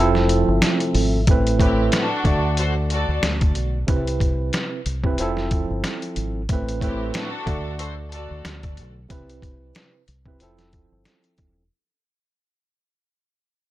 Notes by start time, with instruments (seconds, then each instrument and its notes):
Already playing: fingered electric bass F1, tonewheel organ C3 F3 A3 E4, tine electric piano F3 C4
0.00 tine electric piano E4 A4
0.15 snare
0.29 closed hi-hat
0.48 fingered electric bass G1
0.62 snare, closed hi-hat
0.80 closed hi-hat
0.95 fingered electric bass G#1, open hi-hat
1.27 fingered electric bass A1, tine electric piano A2 A3 C4 B4, kick, closed hi-hat
1.47 closed hi-hat
1.59 tine electric piano A2 A3 C4 B4, string section C4 E4 G4, kick, closed hi-hat
1.92 string section D4 F#4 A4, snare, closed hi-hat
2.24 fingered electric bass D2, tine electric piano D3 A3 F#4 D5, kick, closed hi-hat
2.57 string section F#4 A4 C5, closed hi-hat
2.90 string section F#4 A4 D5, closed hi-hat
3.09 fingered electric bass D2
3.23 fingered electric bass D2, snare, closed hi-hat
3.41 kick, closed hi-hat
3.55 fingered electric bass B1, closed hi-hat
3.87 fingered electric bass C2, tine electric piano C3 C4 E4 B4, kick, closed hi-hat
4.07 closed hi-hat
4.20 kick, closed hi-hat
4.53 snare, closed hi-hat
4.86 fingered electric bass C2, closed hi-hat
5.03 tine electric piano C3 C4 E4 B4, kick
5.18 fingered electric bass F1, tine electric piano F3 C4 E4 A4, closed hi-hat
5.37 snare
5.51 kick, closed hi-hat
5.70 fingered electric bass G1
5.84 snare, closed hi-hat
6.02 closed hi-hat
6.16 fingered electric bass G#1, closed hi-hat
6.49 fingered electric bass A1, tine electric piano A2 A3 C4 B4, kick, closed hi-hat
6.69 closed hi-hat
6.81 tine electric piano A2 A3 C4 B4, string section C4 E4 G4, kick, closed hi-hat
7.14 string section D4 F#4 A4, snare, closed hi-hat
7.46 fingered electric bass D2, tine electric piano D3 A3 F#4 D5, kick, closed hi-hat
7.79 string section F#4 A4 C5, closed hi-hat
8.12 string section F#4 A4 D5, closed hi-hat
8.31 fingered electric bass D2
8.45 fingered electric bass D2, snare, closed hi-hat
8.63 kick, closed hi-hat
8.77 fingered electric bass B1, closed hi-hat
9.09 tine electric piano C3 C4 E4 B4, kick, closed hi-hat
9.30 closed hi-hat
9.42 kick, closed hi-hat
9.75 snare, closed hi-hat
10.08 fingered electric bass C2, closed hi-hat
10.25 tine electric piano C3 C4 E4 B4, kick
10.40 fingered electric bass F1, tine electric piano F3 C4 E4 A4, closed hi-hat
10.59 snare, closed hi-hat
10.73 kick, closed hi-hat
10.92 fingered electric bass G1
11.05 snare, closed hi-hat
11.24 closed hi-hat
11.38 fingered electric bass E1, kick, closed hi-hat